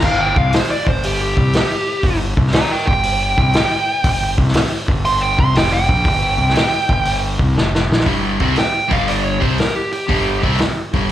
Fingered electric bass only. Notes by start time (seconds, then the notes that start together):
0.02 G1
0.36 C2
0.53 muted fingered electric bass stroke
0.87 G1
1.37 C2
2.03 G1
2.37 C2
2.53 muted fingered electric bass stroke
2.88 G1
3.38 C2
4.04 G1
4.38 C2
4.55 muted fingered electric bass stroke
4.88 G1
5.38 C2
5.55 F1
5.89 A#1
6.05 G1
6.38 C2
6.55 muted fingered electric bass stroke
6.90 G1
7.40 C2
7.55 F1
7.91 A#1
8.06 G1
8.41 C2
8.57 muted fingered electric bass stroke
8.91 G1
9.42 C2
10.09 G1
10.43 C2
10.60 muted fingered electric bass stroke
10.93 G1